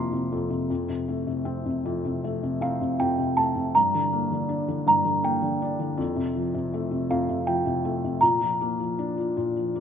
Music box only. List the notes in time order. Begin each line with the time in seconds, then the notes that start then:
Already playing: C6
2.62 F5
3.00 G5
3.37 A5
3.75 A#5
4.88 A#5
5.24 G5
7.11 F5
7.47 G5
8.21 A#5